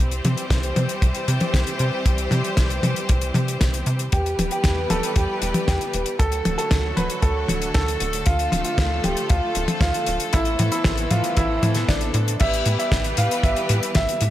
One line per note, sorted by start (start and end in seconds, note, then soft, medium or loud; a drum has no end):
0.00 0.21 C2 medium
0.00 4.09 E3 medium
0.00 4.09 G3 medium
0.00 4.08 C4 medium
0.00 4.09 G4 medium
0.00 4.08 C5 medium
0.11 closed hi-hat medium
0.25 0.36 C3 medium
0.25 closed hi-hat medium
0.25 high tom medium
0.37 closed hi-hat medium
0.50 0.73 C2 loud
0.50 kick loud
0.50 snare loud
0.50 closed hi-hat medium
0.63 closed hi-hat medium
0.76 0.88 C3 medium
0.76 closed hi-hat medium
0.76 high tom medium
0.89 closed hi-hat medium
1.02 1.14 C2 medium
1.02 kick loud
1.02 closed hi-hat medium
1.14 closed hi-hat medium
1.28 1.39 C3 medium
1.28 closed hi-hat medium
1.40 closed hi-hat medium
1.40 high tom medium
1.54 1.65 C2 loud
1.54 kick loud
1.54 snare loud
1.54 closed hi-hat medium
1.67 closed hi-hat medium
1.79 1.91 C3 medium
1.79 closed hi-hat medium
2.06 2.28 C2 loud
2.06 kick loud
2.06 closed hi-hat loud
2.18 closed hi-hat medium
2.31 2.43 C3 medium
2.31 closed hi-hat medium
2.31 high tom medium
2.44 closed hi-hat medium
2.57 2.80 C2 loud
2.57 kick loud
2.57 snare loud
2.57 closed hi-hat loud
2.70 closed hi-hat medium
2.83 2.95 C3 medium
2.83 closed hi-hat medium
2.83 high tom medium
2.96 closed hi-hat medium
3.09 3.32 C2 medium
3.09 kick loud
3.09 closed hi-hat medium
3.21 closed hi-hat medium
3.34 3.58 C3 loud
3.34 closed hi-hat medium
3.34 high tom medium
3.48 closed hi-hat medium
3.61 3.84 C2 loud
3.61 kick loud
3.61 snare loud
3.61 closed hi-hat loud
3.74 closed hi-hat medium
3.86 4.09 C3 medium
3.86 closed hi-hat medium
3.99 closed hi-hat medium
4.12 4.35 E2 loud
4.12 6.17 E3 medium
4.12 6.17 G3 medium
4.12 6.17 B3 medium
4.12 4.47 G4 loud
4.12 6.17 G4 medium
4.12 6.17 B4 medium
4.12 kick loud
4.12 closed hi-hat medium
4.26 closed hi-hat medium
4.38 4.50 E1 loud
4.38 closed hi-hat loud
4.38 high tom medium
4.51 4.86 G4 medium
4.51 closed hi-hat medium
4.64 4.87 E2 medium
4.64 kick loud
4.64 snare loud
4.64 closed hi-hat medium
4.90 5.01 E1 medium
4.90 5.13 A4 medium
4.90 closed hi-hat medium
4.90 high tom medium
5.03 closed hi-hat medium
5.16 5.27 E2 medium
5.16 5.62 G4 medium
5.16 kick loud
5.16 closed hi-hat medium
5.42 5.53 E1 medium
5.42 closed hi-hat medium
5.54 closed hi-hat medium
5.54 high tom medium
5.68 5.79 E2 loud
5.68 6.13 G4 medium
5.68 kick loud
5.68 snare loud
5.68 closed hi-hat medium
5.81 closed hi-hat medium
5.93 6.05 E1 medium
5.93 closed hi-hat medium
6.06 closed hi-hat medium
6.19 6.42 D2 loud
6.19 10.29 D3 medium
6.19 8.24 F#3 medium
6.19 12.36 A3 medium
6.19 8.24 F#4 medium
6.19 6.54 A4 loud
6.19 12.36 A4 medium
6.19 kick loud
6.19 closed hi-hat medium
6.32 closed hi-hat medium
6.45 6.57 D1 medium
6.45 closed hi-hat medium
6.45 high tom medium
6.58 6.92 A4 loud
6.58 closed hi-hat medium
6.71 6.94 D2 medium
6.71 kick loud
6.71 snare loud
6.71 closed hi-hat medium
6.96 7.08 D1 medium
6.96 7.20 B4 medium
6.96 closed hi-hat medium
6.96 high tom medium
7.10 closed hi-hat medium
7.22 7.45 D2 medium
7.22 7.68 A4 medium
7.22 kick loud
7.22 closed hi-hat medium
7.48 7.71 D1 medium
7.48 closed hi-hat medium
7.48 high tom medium
7.62 closed hi-hat medium
7.74 7.97 D2 medium
7.74 8.20 A4 medium
7.74 kick loud
7.74 snare loud
7.74 closed hi-hat medium
7.88 closed hi-hat medium
8.00 8.23 D1 medium
8.00 closed hi-hat medium
8.13 closed hi-hat medium
8.26 8.49 D2 loud
8.26 10.31 F3 medium
8.26 10.31 F4 medium
8.26 8.61 F4 loud
8.26 kick loud
8.26 closed hi-hat medium
8.39 closed hi-hat medium
8.52 8.64 D1 medium
8.52 closed hi-hat medium
8.52 high tom medium
8.64 8.99 F4 medium
8.64 closed hi-hat medium
8.78 9.01 D2 loud
8.78 kick loud
8.78 snare loud
8.78 closed hi-hat medium
9.04 9.15 D1 medium
9.04 9.27 G4 medium
9.04 closed hi-hat medium
9.04 high tom medium
9.17 closed hi-hat medium
9.30 9.41 D2 medium
9.30 9.76 F4 medium
9.30 kick loud
9.30 closed hi-hat medium
9.55 9.67 D1 medium
9.55 closed hi-hat medium
9.68 closed hi-hat medium
9.68 high tom medium
9.81 9.92 D2 loud
9.81 10.27 F4 medium
9.81 kick loud
9.81 snare loud
9.81 closed hi-hat medium
9.94 closed hi-hat medium
10.06 10.19 D1 medium
10.06 closed hi-hat medium
10.20 closed hi-hat medium
10.33 10.56 A1 loud
10.33 12.38 E3 medium
10.33 12.38 B3 medium
10.33 12.38 C4 medium
10.33 10.68 E4 loud
10.33 kick loud
10.33 closed hi-hat medium
10.45 closed hi-hat medium
10.59 10.71 A2 medium
10.59 closed hi-hat medium
10.59 high tom medium
10.72 11.06 E4 medium
10.72 closed hi-hat medium
10.84 11.08 A1 medium
10.84 kick loud
10.84 snare loud
10.84 closed hi-hat medium
10.97 closed hi-hat medium
11.11 11.22 A2 medium
11.11 11.34 F4 medium
11.11 closed hi-hat loud
11.11 high tom medium
11.24 closed hi-hat medium
11.37 11.60 A1 medium
11.37 11.83 E4 medium
11.37 kick loud
11.37 closed hi-hat medium
11.63 11.85 A2 medium
11.63 closed hi-hat medium
11.63 high tom medium
11.75 snare soft
11.75 closed hi-hat medium
11.88 12.11 A1 medium
11.88 12.34 D4 medium
11.88 kick loud
11.88 snare loud
11.88 closed hi-hat medium
12.01 closed hi-hat medium
12.14 12.37 A2 medium
12.14 closed hi-hat medium
12.28 closed hi-hat medium
12.40 12.63 A1 loud
12.40 14.30 E3 medium
12.40 14.30 G3 medium
12.40 14.30 B3 medium
12.40 14.30 G4 medium
12.40 14.30 B4 medium
12.40 12.75 E5 loud
12.40 kick loud
12.40 closed hi-hat medium
12.40 crash loud
12.54 closed hi-hat medium
12.66 12.77 A2 medium
12.66 closed hi-hat loud
12.79 13.13 E5 medium
12.79 closed hi-hat medium
12.92 13.14 A1 loud
12.92 kick loud
12.92 snare loud
12.92 closed hi-hat medium
13.04 closed hi-hat medium
13.17 13.29 A2 medium
13.17 13.41 F5 medium
13.17 closed hi-hat loud
13.31 closed hi-hat medium
13.43 13.55 A1 medium
13.43 13.90 E5 medium
13.43 kick loud
13.43 closed hi-hat medium
13.56 closed hi-hat medium
13.69 13.81 A2 medium
13.69 closed hi-hat medium
13.83 closed hi-hat medium
13.95 14.07 A1 loud
13.95 14.30 E5 medium
13.95 kick loud
13.95 snare loud
13.95 closed hi-hat medium
14.09 closed hi-hat medium
14.21 14.30 A2 medium
14.21 closed hi-hat loud